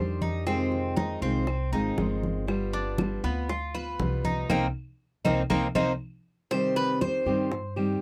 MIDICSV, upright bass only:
0, 0, Header, 1, 2, 480
1, 0, Start_track
1, 0, Key_signature, -3, "minor"
1, 0, Tempo, 503778
1, 444, Time_signature, 4, 2, 24, 8
1, 7637, End_track
2, 0, Start_track
2, 0, Title_t, "Upright bass"
2, 0, Program_c, 0, 32
2, 0, Note_on_c, 0, 41, 81
2, 1101, Note_off_c, 0, 41, 0
2, 1157, Note_on_c, 0, 36, 86
2, 1607, Note_off_c, 0, 36, 0
2, 1638, Note_on_c, 0, 32, 69
2, 1865, Note_off_c, 0, 32, 0
2, 1879, Note_on_c, 0, 31, 85
2, 3021, Note_off_c, 0, 31, 0
2, 3082, Note_on_c, 0, 38, 87
2, 3766, Note_off_c, 0, 38, 0
2, 3803, Note_on_c, 0, 36, 83
2, 4251, Note_off_c, 0, 36, 0
2, 4281, Note_on_c, 0, 36, 83
2, 4462, Note_off_c, 0, 36, 0
2, 4998, Note_on_c, 0, 36, 90
2, 5180, Note_off_c, 0, 36, 0
2, 5240, Note_on_c, 0, 36, 77
2, 5421, Note_off_c, 0, 36, 0
2, 5476, Note_on_c, 0, 36, 80
2, 5659, Note_off_c, 0, 36, 0
2, 6915, Note_on_c, 0, 43, 79
2, 7601, Note_off_c, 0, 43, 0
2, 7637, End_track
0, 0, End_of_file